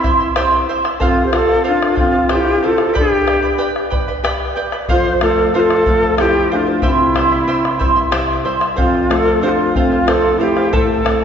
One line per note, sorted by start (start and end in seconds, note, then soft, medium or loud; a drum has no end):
0.00 0.69 C4 medium
0.00 0.70 E4 medium
0.00 0.20 E4 medium
0.00 0.19 C5 medium
0.00 0.20 E5 medium
0.04 0.19 C6 medium
0.04 bombo low medium
0.20 0.35 E4 soft
0.20 0.36 E5 medium
0.20 0.36 C6 medium
0.20 bombo rim soft
0.36 0.68 E4 loud
0.36 0.68 G4 medium
0.36 0.68 C5 medium
0.36 0.68 E5 medium
0.36 0.69 C6 loud
0.36 bombo rim medium
0.69 0.84 E4 medium
0.69 0.85 C5 medium
0.69 0.84 E5 medium
0.69 0.83 C6 medium
0.84 0.99 E4 soft
0.84 1.01 E5 medium
0.84 1.01 C6 medium
0.84 bombo rim medium
1.00 1.24 C4 medium
1.00 1.25 F4 medium
1.00 1.31 A4 medium
1.00 1.32 C5 medium
1.00 1.33 F5 medium
1.00 bombo low medium
1.18 bombo rim soft
1.24 1.31 G4 medium
1.24 1.36 C5 medium
1.32 1.65 F4 medium
1.32 1.49 A4 medium
1.32 1.65 A4 loud
1.32 1.48 C5 medium
1.32 1.47 F5 medium
1.32 bombo rim medium
1.48 1.63 C5 soft
1.48 1.64 F5 medium
1.64 1.96 F4 medium
1.64 1.94 A4 medium
1.64 1.95 C5 medium
1.64 1.95 F5 medium
1.68 1.97 D4 medium
1.82 bombo rim medium
1.95 2.32 F4 medium
1.95 2.13 A4 medium
1.95 2.12 C5 medium
1.95 2.11 F5 medium
1.95 bombo low medium
2.00 2.29 C4 medium
2.12 2.28 C5 soft
2.12 2.29 F5 soft
2.12 bombo rim soft
2.29 2.66 G4 medium
2.29 2.61 A4 medium
2.29 2.62 C5 medium
2.29 bombo rim medium
2.35 2.65 E4 medium
2.63 2.97 F4 medium
2.63 2.79 A4 medium
2.63 2.96 A4 medium
2.63 2.79 C5 medium
2.63 2.78 F5 medium
2.78 2.93 C5 soft
2.78 2.94 F5 medium
2.78 bombo rim medium
2.94 3.27 G4 medium
2.94 3.25 B4 medium
2.94 3.26 D5 medium
2.94 3.25 G5 medium
2.94 3.26 B5 medium
2.94 bombo rim soft
2.94 bombo low medium
2.98 3.66 D4 medium
2.98 3.65 G4 medium
3.13 bombo rim soft
3.26 3.43 B4 medium
3.26 3.43 D5 medium
3.26 3.43 G5 medium
3.26 3.41 B5 medium
3.26 bombo rim medium
3.42 3.57 B4 soft
3.42 3.57 D5 soft
3.42 3.58 B5 medium
3.58 3.91 G4 medium
3.58 3.90 B4 medium
3.58 3.90 D5 medium
3.58 3.89 G5 medium
3.58 3.90 B5 medium
3.76 bombo rim medium
3.90 4.08 B4 medium
3.90 4.07 D5 medium
3.90 4.07 G5 medium
3.90 4.07 B5 medium
3.90 bombo low medium
4.08 4.23 B4 soft
4.08 4.23 D5 medium
4.08 4.24 B5 medium
4.24 4.56 G4 medium
4.24 4.55 B4 medium
4.24 4.55 D5 medium
4.24 4.55 G5 medium
4.24 4.56 B5 medium
4.24 bombo rim medium
4.56 4.72 B4 medium
4.56 4.72 D5 medium
4.56 4.73 G5 medium
4.56 4.72 B5 medium
4.56 bombo rim soft
4.72 4.88 B4 soft
4.72 4.89 D5 soft
4.72 4.89 B5 medium
4.72 bombo rim medium
4.89 6.80 F2 medium
4.89 5.21 F4 medium
4.89 5.21 A4 medium
4.89 5.21 C5 medium
4.89 5.20 C5 loud
4.89 5.22 F5 medium
4.89 bombo low medium
5.06 bombo rim soft
5.21 5.53 A3 medium
5.21 5.52 F4 medium
5.21 5.38 A4 medium
5.21 5.52 A4 medium
5.21 5.38 C5 medium
5.21 5.37 F5 medium
5.21 bombo rim medium
5.38 5.53 C5 soft
5.38 5.54 F5 medium
5.54 5.86 F3 soft
5.54 6.16 F4 loud
5.54 5.85 A4 medium
5.54 5.85 C5 medium
5.54 5.61 C5 medium
5.54 5.86 F5 medium
5.60 6.15 A4 loud
5.70 bombo rim medium
5.86 6.18 A3 medium
5.86 6.03 A4 medium
5.86 6.02 C5 medium
5.86 6.01 F5 medium
5.86 bombo low medium
6.02 6.17 C5 soft
6.02 6.18 F5 soft
6.02 bombo rim soft
6.17 6.50 C4 medium
6.17 6.50 E4 medium
6.17 6.50 G4 medium
6.17 6.50 A4 medium
6.17 6.50 C5 medium
6.17 bombo rim medium
6.51 6.83 A3 medium
6.51 6.83 D4 medium
6.51 6.57 G4 medium
6.51 6.67 A4 medium
6.51 6.66 C5 medium
6.51 6.65 F5 medium
6.56 6.82 F4 medium
6.66 6.81 C5 soft
6.66 6.82 F5 medium
6.82 7.46 C3 medium
6.82 7.15 E4 medium
6.82 8.43 E4 medium
6.82 7.15 G4 medium
6.82 7.14 C5 medium
6.82 7.15 E5 medium
6.82 7.16 C6 medium
6.82 bombo low medium
6.87 8.44 C4 medium
6.99 bombo rim soft
7.14 7.47 G3 medium
7.14 7.31 E4 medium
7.14 7.32 C5 medium
7.14 7.31 E5 medium
7.14 7.30 C6 medium
7.14 bombo rim medium
7.31 7.46 E4 soft
7.31 7.47 E5 soft
7.31 7.47 C6 soft
7.47 7.80 C3 soft
7.47 7.78 E4 medium
7.47 7.81 G4 medium
7.47 7.78 C5 medium
7.47 7.79 E5 medium
7.47 7.80 C6 medium
7.65 bombo rim medium
7.79 8.13 G3 soft
7.79 7.96 E4 medium
7.79 7.96 C5 medium
7.79 7.95 E5 medium
7.79 7.94 C6 medium
7.79 bombo low medium
7.96 8.11 E4 soft
7.96 8.11 E5 soft
7.96 8.11 C6 medium
7.96 bombo rim soft
8.11 8.44 C3 medium
8.11 8.44 E4 loud
8.11 8.45 G4 medium
8.11 8.44 C5 medium
8.11 8.44 E5 medium
8.11 8.44 C6 medium
8.11 bombo rim medium
8.45 8.77 G3 medium
8.45 8.61 E4 medium
8.45 8.62 C5 medium
8.45 8.60 E5 medium
8.45 8.59 C6 medium
8.60 8.75 E4 soft
8.60 8.78 E5 soft
8.60 8.78 C6 soft
8.60 bombo rim medium
8.76 10.69 F2 medium
8.76 9.09 C4 medium
8.76 9.09 A4 medium
8.76 9.09 C5 medium
8.76 9.10 F5 medium
8.76 bombo low medium
8.81 9.15 F4 medium
8.95 bombo rim soft
9.10 9.42 A3 medium
9.10 9.43 F4 medium
9.10 9.27 A4 medium
9.10 9.44 A4 medium
9.10 9.25 C5 medium
9.10 9.24 F5 medium
9.10 bombo rim medium
9.25 9.42 C5 soft
9.25 9.42 F5 medium
9.41 9.75 F3 medium
9.41 9.73 D4 medium
9.41 9.50 G4 medium
9.41 9.74 A4 medium
9.41 9.75 C5 medium
9.41 9.75 F5 medium
9.49 9.74 F4 medium
9.75 10.08 A3 medium
9.75 10.06 C4 medium
9.75 10.09 F4 medium
9.75 9.92 A4 medium
9.75 9.91 C5 medium
9.75 9.90 F5 medium
9.75 bombo low medium
9.92 10.07 C5 soft
9.92 10.07 F5 medium
9.92 bombo rim soft
10.06 10.40 C4 medium
10.06 10.40 F4 medium
10.06 10.38 A4 medium
10.06 10.40 A4 loud
10.06 10.39 C5 medium
10.06 10.40 F5 medium
10.06 bombo rim medium
10.38 10.72 A3 medium
10.38 10.70 E4 medium
10.38 10.75 G4 medium
10.38 10.56 A4 medium
10.38 10.56 C5 medium
10.38 10.55 F5 medium
10.57 10.71 C5 medium
10.57 10.72 F5 medium
10.57 bombo rim soft
10.73 11.24 A2 medium
10.73 11.05 E4 medium
10.73 11.05 A4 medium
10.73 11.06 C5 medium
10.73 10.78 C5 medium
10.73 11.04 E5 medium
10.73 11.05 A5 medium
10.73 bombo low medium
10.77 11.24 A4 medium
11.04 11.24 C4 medium
11.04 11.22 E4 medium
11.04 11.22 A4 medium
11.04 11.22 E5 medium
11.04 11.22 A5 medium
11.04 bombo rim medium